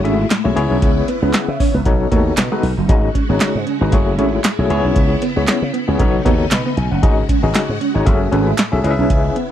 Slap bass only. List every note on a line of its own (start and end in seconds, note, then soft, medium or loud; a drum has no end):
0.05 0.24 G#1 loud
0.45 0.54 B1 medium
0.56 0.67 C#2 medium
0.71 0.79 B1 medium
0.82 1.01 C#2 loud
1.22 1.31 C#2 loud
1.48 1.57 C#3 loud
1.74 1.83 C#2 medium
1.86 2.05 B1 loud
2.12 2.31 D#2 loud
2.37 2.48 B2 loud
2.63 2.74 B1 medium
2.78 2.86 F#1 loud
2.89 3.08 G#1 loud
3.29 3.38 G#1 medium
3.55 3.64 G#2 loud
3.81 3.90 G#1 loud
3.93 4.18 F#1 loud
4.18 4.38 G#1 loud
4.59 4.67 B1 medium
4.70 4.81 C#2 loud
4.85 4.93 B1 medium
4.96 5.15 C#2 loud
5.37 5.45 C#2 loud
5.48 muted slap bass stroke soft
5.62 5.71 C#3 loud
5.88 5.97 C#2 medium
6.00 6.19 B1 loud
6.25 6.45 D#2 loud
6.51 6.62 B2 medium
6.77 6.88 B1 medium
6.92 7.00 F#1 medium
7.03 7.22 G#1 loud
7.43 7.52 G#1 loud
7.69 7.78 G#2 loud
7.95 8.04 G#1 loud
8.07 8.26 F#1 loud
8.32 8.51 G#1 loud
8.73 8.81 B1 medium
8.84 8.95 C#2 medium
8.99 9.07 B1 medium
9.10 9.29 C#2 loud